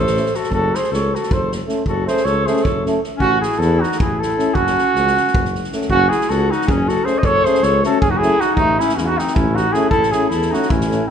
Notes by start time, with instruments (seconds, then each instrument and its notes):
Already playing: tuba A1, flugelhorn C5
0.00 clarinet A4
0.07 snare
0.16 euphonium A3 C#4, snare
0.26 snare
0.34 clarinet F#4, flugelhorn A4, snare
0.43 snare
0.51 tuba F#1, clarinet F#4, flugelhorn A4, kick
0.75 clarinet G#4, flugelhorn C5, snare
0.84 snare
0.91 tuba C#2, clarinet A4, flugelhorn C#5, snare
1.15 clarinet F#4, flugelhorn A4, snare
1.23 snare
1.31 tuba F#1, clarinet A4, flugelhorn C5, kick
1.52 snare
1.67 euphonium A3 C#4, snare
1.85 tuba F#1, clarinet F#4, flugelhorn A4, kick
2.07 euphonium A3 C#4, clarinet G#4, flugelhorn C5, snare
2.17 snare
2.25 tuba C#2, clarinet A4, flugelhorn C#5, snare
2.46 euphonium A3 C#4, clarinet G#4, flugelhorn C5, snare
2.56 snare
2.63 tuba F#1, clarinet A4, flugelhorn C#5, kick
2.85 euphonium A3 C#4, snare
3.04 snare
3.17 tuba A1, clarinet C#4, flugelhorn F#4, kick
3.41 clarinet E4, flugelhorn G#4, snare
3.52 snare
3.58 tuba E2, clarinet E4, flugelhorn A4, snare
3.80 clarinet D#4, flugelhorn F#4, snare
3.92 snare
3.99 tuba A1, clarinet E4, flugelhorn G#4, kick
4.19 clarinet E4, flugelhorn A4, snare
4.38 euphonium A3 C#4, snare
4.54 tuba F#1, clarinet C#4, flugelhorn F#4, kick
4.67 snare
4.78 snare
4.94 tuba C#2, snare
5.07 snare
5.17 snare
5.27 snare
5.34 tuba F#1, kick
5.45 snare
5.55 snare
5.64 snare
5.72 euphonium A3 C#4, snare
5.82 snare
5.89 tuba F#1, clarinet C#4, flugelhorn F#4, kick
6.09 clarinet E4, flugelhorn G#4, snare
6.21 snare
6.29 tuba C#2, clarinet F#4, flugelhorn A4, snare
6.51 clarinet D#4, flugelhorn F#4, snare
6.61 snare
6.67 tuba F#1, clarinet C#4, flugelhorn G#4, kick
6.88 clarinet F#4, flugelhorn A4, snare
7.05 euphonium A3 C#4, clarinet G#4, flugelhorn C5, snare
7.19 tuba F#1, clarinet C5, flugelhorn D#5
7.23 clarinet A4, flugelhorn C#5, kick
7.44 euphonium A3 C#4, clarinet G#4, flugelhorn C5, snare
7.55 snare
7.62 tuba C#2, clarinet A4, flugelhorn C#5, snare
7.83 euphonium A3 C#4, clarinet F#4, flugelhorn A4, snare
8.01 tuba F#1, clarinet C#4, flugelhorn G#4, kick
8.10 clarinet D#4, flugelhorn F#4
8.17 clarinet E4, flugelhorn G#4
8.22 euphonium A3 C#4, snare
8.40 clarinet D#4, flugelhorn F#4, snare
8.55 tuba A1, flugelhorn D#4, kick
8.59 clarinet A3
8.79 clarinet C#4, flugelhorn E4, snare
8.89 snare
8.95 tuba E2, clarinet C#4, flugelhorn F#4, snare
9.00 clarinet C#4, flugelhorn E4
9.06 clarinet D#4, flugelhorn F#4
9.18 clarinet C4, flugelhorn D#4, snare
9.27 snare
9.34 tuba A1, clarinet C#4, flugelhorn E4, kick
9.54 clarinet D#4, flugelhorn F#4, snare
9.72 euphonium A3 C#4, clarinet E4, flugelhorn G#4, snare
9.90 tuba A1, clarinet E4, flugelhorn A4, kick
10.03 snare
10.12 euphonium A3 C#4, clarinet E4, flugelhorn G#4, snare
10.29 tuba E2, clarinet E4, flugelhorn A4, snare
10.42 snare
10.51 euphonium A3 C#4, clarinet D#4, flugelhorn F#4, snare
10.62 snare
10.70 tuba A1, clarinet C#4, flugelhorn E4, kick
10.81 snare
10.89 euphonium A3 C#4, snare